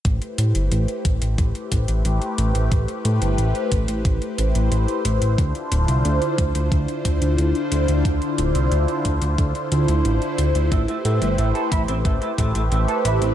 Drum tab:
HH |xxxxxxxxxxxxxxxx|xxxxxxxxxxxxxxxx|xxxxxxxxxxxxxxxx|xxxxxxxxxxxxxxxx|
BD |o-----o-o-o-----|o-----o-o-------|o-----o-o-o-----|o-----o-o-------|

HH |xxxxxxxxxxxxxxxx|
BD |o-----o-o-o-----|